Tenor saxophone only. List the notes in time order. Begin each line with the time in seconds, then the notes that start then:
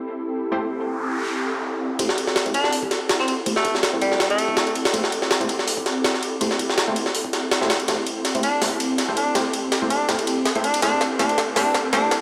2.54 D4
3.20 C4
3.28 C4
3.56 A3
4.02 G3
4.30 A3
8.43 D4
9.17 D4
9.90 D4
10.64 D4
10.83 D4
11.19 D4
11.56 D4
11.93 D4